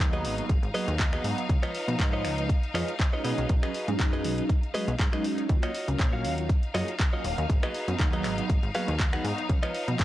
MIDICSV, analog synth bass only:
0, 0, Header, 1, 2, 480
1, 0, Start_track
1, 0, Tempo, 500000
1, 1435, Time_signature, 4, 2, 24, 8
1, 9643, End_track
2, 0, Start_track
2, 0, Title_t, "Analog synth bass"
2, 0, Program_c, 0, 38
2, 0, Note_on_c, 0, 39, 98
2, 233, Note_on_c, 0, 32, 83
2, 247, Note_off_c, 0, 39, 0
2, 393, Note_off_c, 0, 32, 0
2, 475, Note_on_c, 0, 32, 101
2, 557, Note_off_c, 0, 32, 0
2, 602, Note_on_c, 0, 32, 102
2, 673, Note_off_c, 0, 32, 0
2, 843, Note_on_c, 0, 39, 95
2, 1130, Note_off_c, 0, 39, 0
2, 1193, Note_on_c, 0, 44, 92
2, 1276, Note_off_c, 0, 44, 0
2, 1435, Note_on_c, 0, 37, 107
2, 1517, Note_off_c, 0, 37, 0
2, 1804, Note_on_c, 0, 47, 86
2, 1874, Note_off_c, 0, 47, 0
2, 1915, Note_on_c, 0, 44, 95
2, 2153, Note_on_c, 0, 37, 83
2, 2167, Note_off_c, 0, 44, 0
2, 2448, Note_off_c, 0, 37, 0
2, 2632, Note_on_c, 0, 41, 94
2, 2716, Note_off_c, 0, 41, 0
2, 3114, Note_on_c, 0, 47, 102
2, 3197, Note_off_c, 0, 47, 0
2, 3245, Note_on_c, 0, 35, 90
2, 3314, Note_off_c, 0, 35, 0
2, 3355, Note_on_c, 0, 35, 108
2, 3437, Note_off_c, 0, 35, 0
2, 3726, Note_on_c, 0, 44, 88
2, 3795, Note_off_c, 0, 44, 0
2, 3835, Note_on_c, 0, 42, 92
2, 4073, Note_on_c, 0, 35, 80
2, 4087, Note_off_c, 0, 42, 0
2, 4233, Note_off_c, 0, 35, 0
2, 4683, Note_on_c, 0, 35, 89
2, 4753, Note_off_c, 0, 35, 0
2, 4794, Note_on_c, 0, 44, 85
2, 4877, Note_off_c, 0, 44, 0
2, 5274, Note_on_c, 0, 39, 105
2, 5357, Note_off_c, 0, 39, 0
2, 5645, Note_on_c, 0, 37, 82
2, 5715, Note_off_c, 0, 37, 0
2, 5754, Note_on_c, 0, 34, 92
2, 5994, Note_on_c, 0, 39, 81
2, 6008, Note_off_c, 0, 34, 0
2, 6288, Note_off_c, 0, 39, 0
2, 6474, Note_on_c, 0, 42, 94
2, 6557, Note_off_c, 0, 42, 0
2, 6956, Note_on_c, 0, 27, 98
2, 7038, Note_off_c, 0, 27, 0
2, 7086, Note_on_c, 0, 39, 88
2, 7155, Note_off_c, 0, 39, 0
2, 7195, Note_on_c, 0, 32, 101
2, 7278, Note_off_c, 0, 32, 0
2, 7565, Note_on_c, 0, 42, 85
2, 7634, Note_off_c, 0, 42, 0
2, 7676, Note_on_c, 0, 39, 95
2, 7913, Note_on_c, 0, 32, 81
2, 7928, Note_off_c, 0, 39, 0
2, 8074, Note_off_c, 0, 32, 0
2, 8156, Note_on_c, 0, 32, 97
2, 8238, Note_off_c, 0, 32, 0
2, 8286, Note_on_c, 0, 32, 102
2, 8355, Note_off_c, 0, 32, 0
2, 8526, Note_on_c, 0, 39, 95
2, 8811, Note_off_c, 0, 39, 0
2, 8875, Note_on_c, 0, 44, 95
2, 8957, Note_off_c, 0, 44, 0
2, 9115, Note_on_c, 0, 37, 102
2, 9197, Note_off_c, 0, 37, 0
2, 9484, Note_on_c, 0, 47, 83
2, 9554, Note_off_c, 0, 47, 0
2, 9595, Note_on_c, 0, 44, 93
2, 9643, Note_off_c, 0, 44, 0
2, 9643, End_track
0, 0, End_of_file